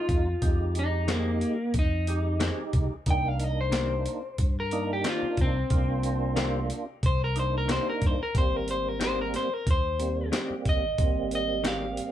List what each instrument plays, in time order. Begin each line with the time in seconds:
Already playing: tonewheel organ G#3 D#4 F4, clean electric guitar F4
0.09 fingered electric bass F2, kick, closed hi-hat
0.42 fingered electric bass F2, tonewheel organ G#3 D#4 G4, kick, closed hi-hat
0.75 clean electric guitar D#4, closed hi-hat
1.08 clean electric guitar D#3 G#3 A#3 C4 G#4, snare, closed hi-hat
1.41 closed hi-hat
1.74 fingered electric bass F2, kick, closed hi-hat
1.79 clean electric guitar D#4
2.07 tonewheel organ G#3 D#4 G4, closed hi-hat
2.40 clean electric guitar D#3 G#3 C4 G#4, snare, closed hi-hat
2.73 fingered electric bass C2, kick, closed hi-hat
3.06 fingered electric bass C2, tonewheel organ A#3 D4 D#4, kick, closed hi-hat
3.10 clean electric guitar G5
3.28 clean electric guitar F5
3.40 closed hi-hat
3.44 clean electric guitar D#5
3.61 clean electric guitar C5
3.72 clean electric guitar D#3 A#3 C4 G4, snare, closed hi-hat
4.06 closed hi-hat
4.38 fingered electric bass G2, kick, closed hi-hat
4.60 clean electric guitar A#4
4.71 tonewheel organ A#3 D4 D#4, closed hi-hat
4.93 clean electric guitar G4
5.04 clean electric guitar D#3 A#3 C4 G4, snare, closed hi-hat
5.09 clean electric guitar F4
5.22 muted fingered electric bass stroke
5.37 fingered electric bass C2, kick, closed hi-hat
5.41 clean electric guitar C4
5.70 fingered electric bass C2, tonewheel organ A#3 D4 F4, kick, closed hi-hat
6.03 closed hi-hat
6.36 clean electric guitar D#3 A#3 C4 G4, snare, closed hi-hat
6.70 closed hi-hat
7.03 fingered electric bass C2, clean electric guitar C5, kick, closed hi-hat
7.24 clean electric guitar A#4
7.36 tonewheel organ A#3 D4 D#4, clean electric guitar C5, closed hi-hat
7.58 clean electric guitar A#4
7.68 clean electric guitar D#3 A#3 C4 G4 C5, snare, closed hi-hat
7.90 clean electric guitar A#4
8.02 fingered electric bass G2, kick, closed hi-hat
8.06 clean electric guitar C5
8.20 clean electric guitar A#4, muted fingered electric bass stroke
8.35 fingered electric bass G#1, tonewheel organ G3 A#3 C4, clean electric guitar C5, kick, closed hi-hat
8.56 clean electric guitar A#4
8.68 clean electric guitar C5, closed hi-hat
8.89 clean electric guitar A#4
9.00 clean electric guitar D#3 G#3 C4 G4 C5, snare, closed hi-hat
9.21 clean electric guitar A#4
9.34 clean electric guitar C5, snare, closed hi-hat
9.54 clean electric guitar A#4
9.67 fingered electric bass D#2, clean electric guitar C5, kick, closed hi-hat
9.99 tonewheel organ G3 A#3 C4, closed hi-hat
10.32 clean electric guitar D#3 G#3 C4 G4, snare, closed hi-hat
10.50 muted fingered electric bass stroke
10.65 fingered electric bass G#1, clean electric guitar D#5, kick, closed hi-hat
10.98 fingered electric bass G#1, tonewheel organ G3 A#3 C4, kick, closed hi-hat
11.31 clean electric guitar D#5, closed hi-hat
11.64 clean electric guitar D#3 G#3 C4 G4 F5, snare, closed hi-hat
11.97 closed hi-hat